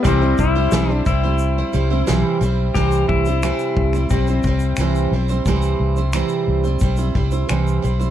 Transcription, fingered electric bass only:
\new Staff \with { instrumentName = "Fingered electric bass" } { \clef bass \time 4/4 \key c \lydian \tempo 4 = 89 c,8 c,8 b,,8 c,4 c,8 b,,16 r16 b,,8 | c,8 c,8. r16 c,8 b,,8 c,8 c,8 b,,8 | c,8 c,8. r16 c,8 b,,8 c,8 c,8 b,,8 | }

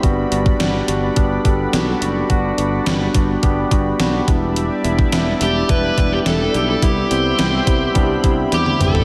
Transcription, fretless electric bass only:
\new Staff \with { instrumentName = "Fretless electric bass" } { \clef bass \time 4/4 \key g \major \tempo 4 = 106 g,,8 g,,8 g,,8 g,,8 g,,8 g,,8 b,,8 fis,,8 | g,,8 g,,8 g,,8 g,,8 g,,8 g,,8 b,,8 e,,8~ | e,,8 e,,8 e,,8 e,,8 e,,8 e,,8 e,,8 b,,8 | c,8 c,8 c,8 c,8 c,8 c,8 e,8 aes,,8 | }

